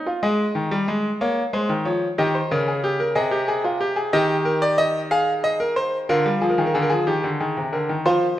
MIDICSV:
0, 0, Header, 1, 2, 480
1, 0, Start_track
1, 0, Key_signature, -4, "major"
1, 0, Tempo, 652174
1, 168, Time_signature, 6, 3, 24, 8
1, 6176, End_track
2, 0, Start_track
2, 0, Title_t, "Grand piano"
2, 0, Program_c, 0, 0
2, 48, Note_on_c, 0, 65, 60
2, 164, Note_off_c, 0, 65, 0
2, 167, Note_on_c, 0, 56, 88
2, 167, Note_on_c, 0, 68, 63
2, 168, Note_on_c, 0, 75, 72
2, 316, Note_off_c, 0, 56, 0
2, 405, Note_on_c, 0, 51, 75
2, 523, Note_off_c, 0, 51, 0
2, 526, Note_on_c, 0, 55, 85
2, 644, Note_off_c, 0, 55, 0
2, 648, Note_on_c, 0, 56, 83
2, 798, Note_off_c, 0, 56, 0
2, 868, Note_off_c, 0, 75, 0
2, 890, Note_on_c, 0, 73, 68
2, 892, Note_on_c, 0, 58, 80
2, 1039, Note_off_c, 0, 73, 0
2, 1041, Note_off_c, 0, 58, 0
2, 1128, Note_on_c, 0, 56, 88
2, 1130, Note_on_c, 0, 72, 63
2, 1246, Note_off_c, 0, 56, 0
2, 1246, Note_on_c, 0, 51, 74
2, 1279, Note_off_c, 0, 72, 0
2, 1363, Note_on_c, 0, 53, 76
2, 1365, Note_off_c, 0, 51, 0
2, 1365, Note_on_c, 0, 73, 60
2, 1514, Note_off_c, 0, 53, 0
2, 1515, Note_off_c, 0, 73, 0
2, 1581, Note_off_c, 0, 68, 0
2, 1606, Note_on_c, 0, 67, 77
2, 1608, Note_on_c, 0, 51, 84
2, 1608, Note_on_c, 0, 75, 73
2, 1724, Note_off_c, 0, 67, 0
2, 1727, Note_on_c, 0, 72, 64
2, 1757, Note_off_c, 0, 51, 0
2, 1844, Note_off_c, 0, 72, 0
2, 1849, Note_on_c, 0, 70, 68
2, 1850, Note_on_c, 0, 49, 81
2, 1965, Note_off_c, 0, 70, 0
2, 1972, Note_on_c, 0, 68, 67
2, 2085, Note_off_c, 0, 68, 0
2, 2088, Note_on_c, 0, 67, 82
2, 2203, Note_off_c, 0, 67, 0
2, 2207, Note_on_c, 0, 70, 74
2, 2302, Note_off_c, 0, 75, 0
2, 2311, Note_off_c, 0, 49, 0
2, 2321, Note_on_c, 0, 68, 78
2, 2322, Note_off_c, 0, 70, 0
2, 2322, Note_on_c, 0, 48, 84
2, 2323, Note_on_c, 0, 75, 81
2, 2438, Note_off_c, 0, 68, 0
2, 2439, Note_on_c, 0, 67, 72
2, 2557, Note_off_c, 0, 67, 0
2, 2562, Note_on_c, 0, 68, 78
2, 2677, Note_off_c, 0, 68, 0
2, 2682, Note_on_c, 0, 65, 69
2, 2797, Note_off_c, 0, 65, 0
2, 2801, Note_on_c, 0, 67, 75
2, 2916, Note_on_c, 0, 68, 80
2, 2917, Note_off_c, 0, 67, 0
2, 3017, Note_off_c, 0, 48, 0
2, 3018, Note_off_c, 0, 75, 0
2, 3034, Note_off_c, 0, 68, 0
2, 3040, Note_on_c, 0, 75, 93
2, 3041, Note_on_c, 0, 51, 86
2, 3042, Note_on_c, 0, 67, 88
2, 3189, Note_off_c, 0, 75, 0
2, 3276, Note_on_c, 0, 70, 81
2, 3395, Note_off_c, 0, 70, 0
2, 3400, Note_on_c, 0, 74, 97
2, 3516, Note_off_c, 0, 74, 0
2, 3518, Note_on_c, 0, 75, 113
2, 3668, Note_off_c, 0, 75, 0
2, 3740, Note_off_c, 0, 67, 0
2, 3761, Note_on_c, 0, 77, 100
2, 3763, Note_on_c, 0, 68, 84
2, 3910, Note_off_c, 0, 77, 0
2, 4002, Note_on_c, 0, 75, 96
2, 4118, Note_off_c, 0, 75, 0
2, 4121, Note_on_c, 0, 70, 79
2, 4238, Note_off_c, 0, 70, 0
2, 4241, Note_on_c, 0, 72, 85
2, 4390, Note_off_c, 0, 72, 0
2, 4452, Note_off_c, 0, 51, 0
2, 4460, Note_off_c, 0, 68, 0
2, 4483, Note_on_c, 0, 65, 76
2, 4484, Note_on_c, 0, 70, 95
2, 4485, Note_on_c, 0, 50, 79
2, 4600, Note_off_c, 0, 50, 0
2, 4605, Note_on_c, 0, 55, 69
2, 4633, Note_off_c, 0, 70, 0
2, 4720, Note_off_c, 0, 55, 0
2, 4720, Note_on_c, 0, 68, 67
2, 4722, Note_on_c, 0, 53, 74
2, 4781, Note_off_c, 0, 68, 0
2, 4781, Note_on_c, 0, 70, 68
2, 4839, Note_off_c, 0, 53, 0
2, 4840, Note_off_c, 0, 70, 0
2, 4843, Note_on_c, 0, 51, 76
2, 4844, Note_on_c, 0, 68, 69
2, 4902, Note_off_c, 0, 68, 0
2, 4903, Note_on_c, 0, 70, 72
2, 4960, Note_off_c, 0, 51, 0
2, 4961, Note_off_c, 0, 70, 0
2, 4961, Note_on_c, 0, 68, 73
2, 4966, Note_on_c, 0, 50, 79
2, 5020, Note_off_c, 0, 68, 0
2, 5020, Note_on_c, 0, 70, 74
2, 5075, Note_on_c, 0, 68, 83
2, 5079, Note_off_c, 0, 70, 0
2, 5082, Note_off_c, 0, 50, 0
2, 5090, Note_on_c, 0, 53, 67
2, 5184, Note_off_c, 0, 65, 0
2, 5200, Note_off_c, 0, 68, 0
2, 5202, Note_on_c, 0, 67, 73
2, 5204, Note_off_c, 0, 53, 0
2, 5204, Note_on_c, 0, 51, 70
2, 5321, Note_off_c, 0, 51, 0
2, 5327, Note_on_c, 0, 50, 68
2, 5353, Note_off_c, 0, 67, 0
2, 5443, Note_off_c, 0, 50, 0
2, 5449, Note_on_c, 0, 68, 63
2, 5450, Note_on_c, 0, 51, 69
2, 5565, Note_off_c, 0, 51, 0
2, 5573, Note_on_c, 0, 48, 65
2, 5597, Note_off_c, 0, 68, 0
2, 5686, Note_off_c, 0, 48, 0
2, 5687, Note_on_c, 0, 50, 56
2, 5688, Note_on_c, 0, 70, 66
2, 5804, Note_off_c, 0, 50, 0
2, 5809, Note_on_c, 0, 51, 68
2, 5838, Note_off_c, 0, 70, 0
2, 5925, Note_off_c, 0, 51, 0
2, 5929, Note_on_c, 0, 65, 92
2, 5930, Note_on_c, 0, 72, 77
2, 5932, Note_on_c, 0, 53, 76
2, 6079, Note_off_c, 0, 65, 0
2, 6176, Note_off_c, 0, 53, 0
2, 6176, Note_off_c, 0, 72, 0
2, 6176, End_track
0, 0, End_of_file